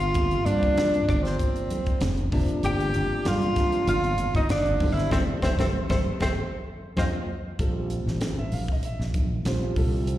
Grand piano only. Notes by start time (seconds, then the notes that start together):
0.15 C3 F3 A#3 F4
0.45 C3 F3 A#3 D4
1.08 C3 F3 A#3 F4
2.32 C3 F3 A#3 D4
2.94 C3 F3 A#3 D4
3.57 C3 F3 A#3 D4
4.81 D3 G3 C4 E4
5.12 G3 A3 C4
5.43 G3 A3 C4
5.60 G3 A3 C4
5.90 G3 A3 C4
6.21 G3 A3 C4
6.98 F3 A#3 C4
7.59 G3 C4 F4 A4
8.38 E5
8.53 F5
8.72 D#5
8.85 E5
9.46 G3 C4 F4 C5
9.77 G3 C4 F4 A4